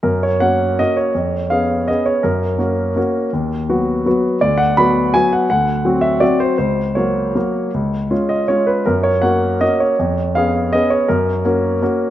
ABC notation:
X:1
M:3/4
L:1/8
Q:1/4=163
K:F#
V:1 name="Grand piano"
A c f2 d c- | c2 e2 d c | A6- | A4- A z |
=d f b2 g f | f3 =e =d =c | ^B2 c4- | c3 d c B |
A c f2 d c- | c2 e2 d c | A6 |]
V:2 name="Grand piano"
F,,2 [A,CF]2 [A,CF]2 | E,,2 [B,CG]2 [B,CG]2 | F,,2 [A,CF]2 [A,CF]2 | D,,2 [F,B,F]2 [F,B,F]2 |
=D,,2 [F,B,F]2 [F,B,F]2 | =D,,2 [F,=CF]2 [F,CF]2 | C,,2 [F,A,F]2 [F,A,F]2 | C,,2 [G,CE]2 [G,CE]2 |
F,,2 [A,CF]2 [A,CF]2 | E,,2 [B,CG]2 [B,CG]2 | F,,2 [A,CF]2 [A,CF]2 |]